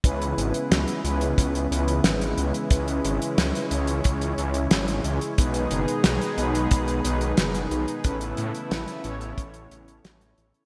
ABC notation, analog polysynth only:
X:1
M:4/4
L:1/8
Q:1/4=90
K:C#m
V:1 name="Analog polysynth"
[CEGB]3 [CEGB]2 [CEGB]3 | [CEGB]3 [CEGc]4- [CEGc] | [B,DGB]3 [B,DGB]2 [B,DGB]3 | [CEAB]3 [CEAc]4- [CEAc] |]